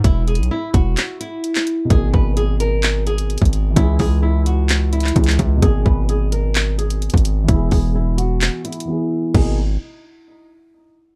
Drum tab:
CC |------------------------------------------------|------------------------------------------------|------------------------------------------------|------------------------------------------------|
HH |x-----x-x-x-------x-----x-----x-----x--x--x-----|x-----------x-----x-----x-----x--x--x-x-x-x-----|x-----o-----------x-----x-----x-x-x-x-x-x-x-----|x-----------x-----x-----x-----x--x--x-x-x-x-----|
CP |------------------------x--------------x--------|------------------------x-----------------------|------------------------x--------x-----x--------|------------------------x-----------------------|
BD |o-----------------o-----------------------------|o-----o--------------------------------o--------|o-----o-----------------------------o-----o-----|o-----o--------------------------------o--------|

CC |------------------------------------------------|x-----------------------------------------------|
HH |x-----o-----------x-----x-----x-x-x-------------|------------------------------------------------|
CP |------------------------x-----------------------|------------------------------------------------|
BD |o-----o-----------------------------------------|o-----------------------------------------------|